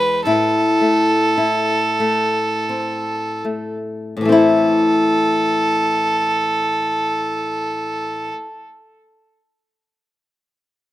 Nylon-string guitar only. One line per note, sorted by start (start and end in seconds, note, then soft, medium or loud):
0.00 0.26 E2 medium
0.00 0.37 G#3 medium
0.00 0.26 E4 medium
0.25 4.15 A2 medium
0.25 1.37 E4 medium
0.81 1.99 A3 medium
1.38 4.32 E4 medium
2.00 3.44 A3 medium
2.69 4.28 C4 soft
3.45 4.25 A3 soft
4.17 8.29 A2 medium
4.21 8.33 E3 medium
4.25 8.38 A3 medium
4.25 8.41 C4 medium
4.32 8.45 E4 medium